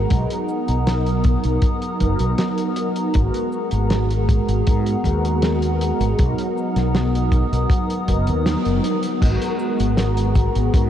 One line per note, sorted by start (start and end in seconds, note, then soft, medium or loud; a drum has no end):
0.00 0.13 G#3 medium
0.00 0.10 B3 medium
0.00 0.13 F#4 medium
0.00 0.12 A#4 loud
0.00 3.10 F#5 medium
0.00 9.18 A#5 medium
0.09 0.25 B1 loud
0.09 1.95 F#3 medium
0.09 1.96 B3 medium
0.09 3.11 B3 medium
0.09 1.96 D#4 medium
0.09 1.97 A#4 loud
0.09 3.11 D#6 medium
0.09 kick loud
0.09 closed hi-hat medium
0.09 cabasa soft
0.30 closed hi-hat medium
0.48 cabasa medium
0.68 1.36 B1 medium
0.68 closed hi-hat medium
0.68 cabasa medium
0.87 snare loud
0.87 closed hi-hat medium
0.87 cabasa soft
1.06 closed hi-hat soft
1.24 kick loud
1.24 closed hi-hat medium
1.24 cabasa medium
1.43 1.58 B1 medium
1.43 closed hi-hat soft
1.43 cabasa soft
1.62 kick loud
1.62 closed hi-hat medium
1.62 cabasa soft
1.82 closed hi-hat medium
1.99 2.15 F#1 medium
1.99 3.09 F#3 loud
1.99 3.10 B3 medium
1.99 3.10 D#4 medium
1.99 3.11 A#4 loud
1.99 kick medium
1.99 closed hi-hat medium
1.99 cabasa medium
2.19 2.33 B1 loud
2.19 closed hi-hat medium
2.19 cabasa medium
2.38 snare loud
2.38 closed hi-hat medium
2.38 cabasa medium
2.58 closed hi-hat soft
2.76 closed hi-hat medium
2.76 cabasa medium
2.96 closed hi-hat medium
2.96 cabasa medium
3.13 3.29 G#1 loud
3.13 4.99 G#3 medium
3.13 5.00 B3 medium
3.13 5.00 F#4 medium
3.13 6.15 G#4 medium
3.13 5.01 A#4 medium
3.13 9.18 F#5 medium
3.13 kick loud
3.13 closed hi-hat medium
3.13 cabasa soft
3.34 closed hi-hat medium
3.52 cabasa medium
3.71 4.39 G#1 medium
3.71 closed hi-hat medium
3.71 cabasa medium
3.90 snare loud
3.90 closed hi-hat medium
3.90 cabasa soft
4.11 closed hi-hat medium
4.29 kick loud
4.29 closed hi-hat medium
4.29 cabasa medium
4.49 4.61 G#1 medium
4.49 closed hi-hat soft
4.49 cabasa medium
4.66 4.95 G#2 medium
4.66 kick loud
4.66 closed hi-hat medium
4.66 cabasa soft
4.86 closed hi-hat medium
5.03 5.91 D#2 loud
5.03 6.13 G#3 loud
5.03 6.14 B3 medium
5.03 6.14 F#4 medium
5.03 6.15 A#4 loud
5.03 kick medium
5.03 closed hi-hat medium
5.03 cabasa medium
5.25 closed hi-hat medium
5.25 cabasa medium
5.42 snare loud
5.42 closed hi-hat medium
5.42 cabasa medium
5.62 closed hi-hat medium
5.81 closed hi-hat medium
5.81 cabasa medium
6.00 6.13 G#1 loud
6.00 closed hi-hat medium
6.00 cabasa medium
6.17 6.33 B1 loud
6.17 8.03 F#3 medium
6.17 8.04 B3 medium
6.17 9.19 B3 medium
6.17 8.04 D#4 medium
6.17 8.05 A#4 medium
6.17 9.19 D#6 medium
6.17 kick loud
6.17 closed hi-hat medium
6.17 cabasa soft
6.38 closed hi-hat medium
6.57 cabasa medium
6.76 7.43 B1 medium
6.76 snare soft
6.76 closed hi-hat medium
6.76 cabasa medium
6.95 snare loud
6.95 closed hi-hat medium
6.95 cabasa soft
7.15 closed hi-hat medium
7.32 kick loud
7.32 closed hi-hat medium
7.32 cabasa medium
7.53 7.65 B1 medium
7.53 closed hi-hat medium
7.53 cabasa medium
7.70 kick loud
7.70 closed hi-hat medium
7.70 cabasa soft
7.90 closed hi-hat medium
8.06 8.30 F#1 loud
8.06 9.17 F#3 medium
8.06 9.17 B3 medium
8.06 9.18 D#4 medium
8.06 9.18 A#4 loud
8.06 kick medium
8.06 closed hi-hat medium
8.06 cabasa medium
8.27 8.55 D#2 medium
8.27 closed hi-hat medium
8.27 cabasa medium
8.46 snare loud
8.46 closed hi-hat medium
8.46 cabasa soft
8.65 8.79 F#1 medium
8.65 closed hi-hat medium
8.84 closed hi-hat medium
8.84 cabasa medium
9.03 closed hi-hat medium
9.03 cabasa medium
9.20 9.36 G#1 loud
9.20 10.90 G#3 medium
9.20 10.90 B3 medium
9.20 10.90 F#4 medium
9.20 10.90 G#4 medium
9.20 10.90 A#4 medium
9.20 10.90 F#5 medium
9.20 10.90 A#5 medium
9.20 kick loud
9.20 closed hi-hat loud
9.20 crash medium
9.20 cabasa soft
9.42 closed hi-hat medium
9.59 cabasa medium
9.79 10.47 G#1 medium
9.79 closed hi-hat medium
9.79 cabasa medium
9.97 snare loud
9.97 closed hi-hat loud
9.97 cabasa soft
10.17 closed hi-hat medium
10.35 kick loud
10.35 closed hi-hat medium
10.35 cabasa medium
10.55 10.69 G#1 medium
10.55 closed hi-hat medium
10.55 cabasa medium
10.73 10.90 G#2 medium
10.73 kick loud
10.73 closed hi-hat loud
10.73 cabasa soft